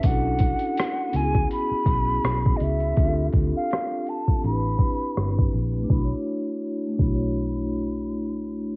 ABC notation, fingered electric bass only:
X:1
M:4/4
L:1/16
Q:"Swing 16ths" 1/4=82
K:C#phr
V:1 name="Fingered electric bass" clef=bass
B,,,3 z3 C,,2 z2 B,,,2 B,,,2 C,,2 | D,,2 D,, z4 z A,,,2 z2 =G,,,2 ^A,,,2 | B,,,2 z4 B,,,8- B,,,2 |]